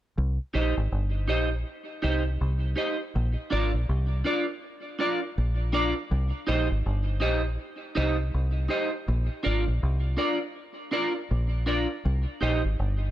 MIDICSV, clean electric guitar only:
0, 0, Header, 1, 2, 480
1, 0, Start_track
1, 0, Key_signature, -3, "minor"
1, 0, Tempo, 741656
1, 109, Time_signature, 4, 2, 24, 8
1, 8486, End_track
2, 0, Start_track
2, 0, Title_t, "Clean electric guitar"
2, 0, Program_c, 0, 27
2, 347, Note_on_c, 0, 63, 74
2, 352, Note_on_c, 0, 67, 84
2, 354, Note_on_c, 0, 72, 81
2, 361, Note_on_c, 0, 75, 89
2, 476, Note_off_c, 0, 63, 0
2, 478, Note_off_c, 0, 67, 0
2, 479, Note_off_c, 0, 72, 0
2, 483, Note_off_c, 0, 75, 0
2, 826, Note_on_c, 0, 63, 74
2, 832, Note_on_c, 0, 67, 84
2, 836, Note_on_c, 0, 72, 80
2, 839, Note_on_c, 0, 75, 81
2, 955, Note_off_c, 0, 63, 0
2, 958, Note_off_c, 0, 67, 0
2, 960, Note_off_c, 0, 72, 0
2, 962, Note_off_c, 0, 75, 0
2, 1309, Note_on_c, 0, 63, 72
2, 1313, Note_on_c, 0, 67, 77
2, 1318, Note_on_c, 0, 72, 74
2, 1321, Note_on_c, 0, 75, 81
2, 1437, Note_off_c, 0, 63, 0
2, 1439, Note_off_c, 0, 67, 0
2, 1441, Note_off_c, 0, 72, 0
2, 1443, Note_off_c, 0, 75, 0
2, 1785, Note_on_c, 0, 63, 67
2, 1790, Note_on_c, 0, 67, 75
2, 1795, Note_on_c, 0, 72, 73
2, 1799, Note_on_c, 0, 75, 75
2, 1914, Note_off_c, 0, 63, 0
2, 1917, Note_off_c, 0, 67, 0
2, 1920, Note_off_c, 0, 72, 0
2, 1922, Note_off_c, 0, 75, 0
2, 2267, Note_on_c, 0, 62, 82
2, 2271, Note_on_c, 0, 65, 76
2, 2277, Note_on_c, 0, 70, 81
2, 2279, Note_on_c, 0, 74, 93
2, 2396, Note_off_c, 0, 62, 0
2, 2397, Note_off_c, 0, 65, 0
2, 2401, Note_off_c, 0, 70, 0
2, 2402, Note_off_c, 0, 74, 0
2, 2747, Note_on_c, 0, 62, 80
2, 2752, Note_on_c, 0, 65, 82
2, 2757, Note_on_c, 0, 70, 84
2, 2760, Note_on_c, 0, 74, 88
2, 2876, Note_off_c, 0, 62, 0
2, 2878, Note_off_c, 0, 65, 0
2, 2880, Note_off_c, 0, 70, 0
2, 2882, Note_off_c, 0, 74, 0
2, 3227, Note_on_c, 0, 62, 81
2, 3234, Note_on_c, 0, 65, 85
2, 3237, Note_on_c, 0, 70, 84
2, 3241, Note_on_c, 0, 74, 87
2, 3356, Note_off_c, 0, 62, 0
2, 3359, Note_off_c, 0, 65, 0
2, 3361, Note_off_c, 0, 70, 0
2, 3363, Note_off_c, 0, 74, 0
2, 3706, Note_on_c, 0, 62, 78
2, 3709, Note_on_c, 0, 65, 83
2, 3713, Note_on_c, 0, 70, 89
2, 3717, Note_on_c, 0, 74, 90
2, 3835, Note_off_c, 0, 62, 0
2, 3837, Note_off_c, 0, 65, 0
2, 3839, Note_off_c, 0, 70, 0
2, 3841, Note_off_c, 0, 74, 0
2, 4185, Note_on_c, 0, 63, 81
2, 4190, Note_on_c, 0, 67, 83
2, 4195, Note_on_c, 0, 72, 89
2, 4197, Note_on_c, 0, 75, 91
2, 4315, Note_off_c, 0, 63, 0
2, 4317, Note_off_c, 0, 67, 0
2, 4320, Note_off_c, 0, 72, 0
2, 4321, Note_off_c, 0, 75, 0
2, 4661, Note_on_c, 0, 63, 82
2, 4668, Note_on_c, 0, 67, 90
2, 4669, Note_on_c, 0, 72, 90
2, 4673, Note_on_c, 0, 75, 91
2, 4793, Note_off_c, 0, 63, 0
2, 4796, Note_off_c, 0, 67, 0
2, 4797, Note_off_c, 0, 72, 0
2, 4799, Note_off_c, 0, 75, 0
2, 5146, Note_on_c, 0, 63, 87
2, 5150, Note_on_c, 0, 67, 87
2, 5155, Note_on_c, 0, 72, 93
2, 5158, Note_on_c, 0, 75, 85
2, 5276, Note_off_c, 0, 63, 0
2, 5278, Note_off_c, 0, 67, 0
2, 5280, Note_off_c, 0, 72, 0
2, 5281, Note_off_c, 0, 75, 0
2, 5621, Note_on_c, 0, 63, 72
2, 5628, Note_on_c, 0, 67, 80
2, 5632, Note_on_c, 0, 72, 80
2, 5637, Note_on_c, 0, 75, 90
2, 5753, Note_off_c, 0, 63, 0
2, 5757, Note_off_c, 0, 67, 0
2, 5759, Note_off_c, 0, 72, 0
2, 5761, Note_off_c, 0, 75, 0
2, 6104, Note_on_c, 0, 62, 81
2, 6108, Note_on_c, 0, 65, 77
2, 6109, Note_on_c, 0, 70, 77
2, 6114, Note_on_c, 0, 74, 80
2, 6235, Note_off_c, 0, 62, 0
2, 6237, Note_off_c, 0, 65, 0
2, 6238, Note_off_c, 0, 70, 0
2, 6240, Note_off_c, 0, 74, 0
2, 6581, Note_on_c, 0, 62, 82
2, 6587, Note_on_c, 0, 65, 80
2, 6589, Note_on_c, 0, 70, 86
2, 6591, Note_on_c, 0, 74, 89
2, 6714, Note_off_c, 0, 62, 0
2, 6717, Note_off_c, 0, 65, 0
2, 6718, Note_off_c, 0, 70, 0
2, 6719, Note_off_c, 0, 74, 0
2, 7063, Note_on_c, 0, 62, 78
2, 7068, Note_on_c, 0, 65, 83
2, 7072, Note_on_c, 0, 70, 88
2, 7074, Note_on_c, 0, 74, 84
2, 7195, Note_off_c, 0, 62, 0
2, 7198, Note_off_c, 0, 65, 0
2, 7200, Note_off_c, 0, 70, 0
2, 7200, Note_off_c, 0, 74, 0
2, 7547, Note_on_c, 0, 62, 75
2, 7551, Note_on_c, 0, 65, 78
2, 7554, Note_on_c, 0, 70, 83
2, 7560, Note_on_c, 0, 74, 85
2, 7677, Note_off_c, 0, 62, 0
2, 7679, Note_off_c, 0, 65, 0
2, 7681, Note_off_c, 0, 70, 0
2, 7684, Note_off_c, 0, 74, 0
2, 8029, Note_on_c, 0, 63, 74
2, 8035, Note_on_c, 0, 67, 82
2, 8039, Note_on_c, 0, 72, 76
2, 8043, Note_on_c, 0, 75, 96
2, 8159, Note_off_c, 0, 63, 0
2, 8162, Note_off_c, 0, 67, 0
2, 8164, Note_off_c, 0, 72, 0
2, 8166, Note_off_c, 0, 75, 0
2, 8486, End_track
0, 0, End_of_file